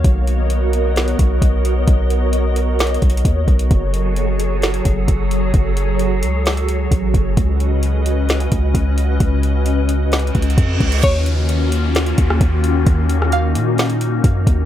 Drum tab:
CC |------------------------------------------------|------------------------------------------------|------------------------------------------------|------------------------------------------------|
HH |x-----x-----x-----x-----x--x--x-----x-----x-----|x-----x-----x-----x-----x-x-x-x-x-x-x-----x--x--|x-----x-----x-----x-----x--x--x-----x-----x-----|x-----x-----x-----x-----x--x--x-----x-----x-----|
SD |------------------------o-----------------------|------------------------o-----------------------|------------------------o-----------------------|------------------------o-----------------------|
BD |o-----------------------------o-----o-----------|o-----------------------------o-----o-----o-----|o-----------------------------o-----o-----------|o-----------------------------------o-----o-----|

CC |------------------------------------------------|------------------------------------------------|x-----------------------------------------------|------------------------------------------------|
HH |x-----x-----x-----x-----x--x--x-----x-----x-----|x-----x-----x-----x-----x-x-x-x-x-x-x-----x--x--|x-----x-----x-----x-----x--x--x-----x-----x-----|x-----x-----x-----x-----x--x--x-----x-----x-----|
SD |------------------------o-----------------------|------------------------o-----------------------|------------------------o--------r--------------|---------r--------------o-----------------------|
BD |o-----------------------------o-----o-----------|o-----------------------------o-----o-----o-----|o-----------------------------o-----o-----------|o-----------------------------------o-----o-----|